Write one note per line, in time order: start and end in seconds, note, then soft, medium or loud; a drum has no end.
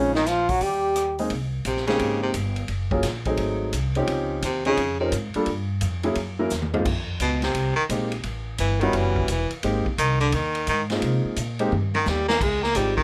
0.00 0.58 A#1 medium
0.00 0.15 C#3 medium
0.00 0.12 G#3 medium
0.00 0.12 C4 medium
0.00 0.12 C#4 medium
0.00 0.14 C#4 medium
0.00 0.12 D#4 medium
0.00 0.13 F4 medium
0.15 0.29 D#3 medium
0.15 0.30 D#4 medium
0.15 snare medium
0.26 0.51 F3 medium
0.26 0.52 F4 medium
0.26 snare soft
0.26 closed hi-hat medium
0.49 0.64 F#3 medium
0.49 0.65 F#4 loud
0.49 kick medium
0.49 open hi-hat soft
0.61 1.27 D#2 medium
0.61 1.19 G3 medium
0.61 1.20 G4 medium
0.61 kick soft
0.61 open hi-hat medium
0.96 cross-stick medium
0.96 closed hi-hat medium
1.18 1.30 G#3 medium
1.18 1.30 A#3 medium
1.18 1.30 C4 medium
1.18 1.30 D#4 medium
1.18 1.30 G#4 medium
1.18 open hi-hat soft
1.30 1.64 C2 medium
1.30 kick soft
1.30 ride medium
1.65 1.99 A#1 medium
1.65 1.86 C3 medium
1.65 kick soft
1.65 hi-hat pedal medium
1.65 ride medium
1.77 snare soft
1.87 2.20 C#3 medium
1.87 2.32 G#3 medium
1.87 2.32 A#3 medium
1.87 2.33 C4 medium
1.87 2.33 D#4 medium
1.87 2.33 G4 medium
1.87 snare soft
1.87 ride soft
1.99 2.34 G#1 medium
1.99 kick soft
1.99 ride medium
2.23 2.34 C3 medium
2.34 2.68 G1 medium
2.34 kick soft
2.34 hi-hat pedal medium
2.34 ride medium
2.56 ride soft
2.68 3.03 F#1 medium
2.68 kick soft
2.68 ride medium
2.91 3.03 F#3 medium
2.91 3.03 A#3 medium
2.91 3.03 C#4 medium
2.91 3.03 F4 medium
2.91 3.03 G#4 medium
2.91 kick medium
3.03 3.37 A#1 medium
3.03 kick soft
3.03 snare soft
3.03 hi-hat pedal medium
3.03 ride medium
3.25 3.71 F#3 medium
3.25 3.71 A3 medium
3.25 3.71 C4 medium
3.25 3.71 D#4 medium
3.25 3.71 G#4 medium
3.25 kick medium
3.25 ride soft
3.37 3.72 G#1 medium
3.37 kick soft
3.37 ride medium
3.73 4.07 C2 medium
3.73 kick soft
3.73 hi-hat pedal medium
3.73 ride medium
3.95 4.41 F3 medium
3.95 4.41 C4 medium
3.95 4.41 C#4 medium
3.95 4.41 D#4 medium
3.95 4.41 G4 medium
3.95 ride soft
4.07 4.41 C#2 medium
4.07 kick soft
4.07 ride medium
4.42 4.77 D#2 medium
4.42 4.65 C3 medium
4.42 kick soft
4.42 hi-hat pedal medium
4.42 ride medium
4.65 4.98 C#3 loud
4.65 4.77 F3 medium
4.65 4.77 C4 medium
4.65 4.77 C#4 medium
4.65 4.77 D#4 medium
4.65 4.77 G#4 medium
4.65 ride soft
4.77 5.11 F2 medium
4.77 kick soft
4.77 ride medium
5.00 5.12 C3 medium
5.00 5.11 F3 medium
5.00 5.12 C4 medium
5.00 5.11 C#4 medium
5.00 5.11 D#4 medium
5.00 5.12 A#4 medium
5.12 5.33 G#2 medium
5.12 kick soft
5.12 hi-hat pedal medium
5.12 ride medium
5.34 5.46 G3 medium
5.34 5.46 A#3 medium
5.34 5.46 D4 medium
5.34 5.46 F4 medium
5.34 5.47 A4 medium
5.34 muted upright bass stroke soft
5.34 ride soft
5.46 5.81 G2 medium
5.46 kick soft
5.46 ride medium
5.81 6.15 F2 medium
5.81 kick soft
5.81 hi-hat pedal medium
5.81 ride medium
6.03 6.15 F#3 medium
6.03 6.15 A#3 medium
6.03 6.15 C#4 medium
6.03 6.15 E4 medium
6.03 6.16 G#4 medium
6.03 ride soft
6.15 6.50 F#2 medium
6.15 kick soft
6.15 ride medium
6.39 6.50 F#3 medium
6.39 6.50 A#3 medium
6.39 6.50 C#4 medium
6.39 6.50 E4 medium
6.39 6.50 A#4 medium
6.50 6.85 E2 medium
6.50 snare soft
6.50 hi-hat pedal medium
6.62 mid tom medium
6.73 6.85 G#3 medium
6.73 6.85 A#3 medium
6.73 6.85 C4 medium
6.73 6.85 D#4 medium
6.73 6.85 F4 medium
6.73 floor tom medium
6.85 7.19 F2 medium
6.85 kick medium
6.85 crash medium
7.20 7.54 C#2 medium
7.20 7.42 B2 medium
7.20 kick soft
7.20 hi-hat pedal medium
7.20 ride medium
7.42 7.75 C3 medium
7.42 snare medium
7.42 ride soft
7.54 7.76 C2 medium
7.54 kick soft
7.54 ride medium
7.76 7.84 D#3 medium
7.76 muted upright bass stroke soft
7.89 8.23 A#1 medium
7.89 8.10 G#3 medium
7.89 8.11 A#3 medium
7.89 8.11 C4 medium
7.89 8.11 D#4 medium
7.89 8.11 G4 medium
7.89 kick soft
7.89 hi-hat pedal medium
7.89 ride medium
8.12 ride soft
8.23 8.58 A1 medium
8.23 kick soft
8.23 ride medium
8.58 8.93 G1 medium
8.58 8.82 E3 medium
8.58 kick soft
8.58 hi-hat pedal medium
8.58 ride medium
8.80 8.98 D#3 medium
8.80 9.27 G3 medium
8.80 9.27 B3 medium
8.80 9.27 C#4 medium
8.80 9.27 E4 medium
8.80 9.27 F#4 medium
8.80 ride soft
8.93 9.28 F#1 medium
8.93 9.30 E3 medium
8.93 kick soft
8.93 ride medium
9.16 kick medium
9.28 9.49 E1 medium
9.28 9.51 E3 medium
9.28 kick soft
9.28 hi-hat pedal medium
9.28 ride medium
9.51 muted upright bass stroke soft
9.51 ride soft
9.63 9.84 G#1 medium
9.63 9.84 G#3 medium
9.63 9.84 A#3 medium
9.63 9.84 C4 medium
9.63 9.84 D#4 medium
9.63 9.84 G4 medium
9.63 kick soft
9.63 ride medium
9.86 muted upright bass stroke soft
9.86 kick medium
9.98 10.32 C2 medium
9.98 10.19 D#3 medium
9.98 kick soft
9.98 hi-hat pedal medium
9.98 ride medium
10.20 10.36 D3 medium
10.20 ride soft
10.32 10.67 D#2 medium
10.32 10.68 D#3 medium
10.32 kick soft
10.32 ride medium
10.55 ride soft
10.67 11.01 G#2 medium
10.67 10.82 D#3 medium
10.67 kick soft
10.67 hi-hat pedal medium
10.67 ride medium
10.90 11.35 G#3 medium
10.90 11.35 A#3 medium
10.90 11.35 C4 medium
10.90 11.36 D#4 medium
10.90 11.35 F4 medium
10.90 snare medium
10.90 ride soft
11.02 11.23 C3 medium
11.02 kick soft
11.02 ride medium
11.25 muted upright bass stroke soft
11.36 11.71 A#2 medium
11.36 kick soft
11.36 hi-hat pedal medium
11.36 ride medium
11.59 11.71 G#3 medium
11.59 11.71 A#3 medium
11.59 11.71 C4 medium
11.59 11.71 D#4 medium
11.59 11.71 G4 medium
11.59 ride soft
11.72 12.06 G2 medium
11.72 mid tom medium
11.95 12.10 D#3 medium
11.95 high tom medium
12.05 12.40 D#2 medium
12.05 12.28 G3 medium
12.05 snare medium
12.05 hi-hat pedal medium
12.28 12.44 A#3 loud
12.28 snare medium
12.41 12.75 C#2 medium
12.41 12.64 G#3 medium
12.41 kick medium
12.41 crash medium
12.63 12.78 A#3 loud
12.63 snare soft
12.75 13.03 G#1 medium
12.75 12.96 F3 medium
12.75 12.96 G3 medium
12.75 12.96 G#3 soft
12.75 12.96 C4 medium
12.75 12.96 D#4 medium
12.75 12.97 G4 medium
12.75 kick soft
12.75 hi-hat pedal medium
12.75 ride medium
12.97 13.03 D#3 medium
12.97 kick medium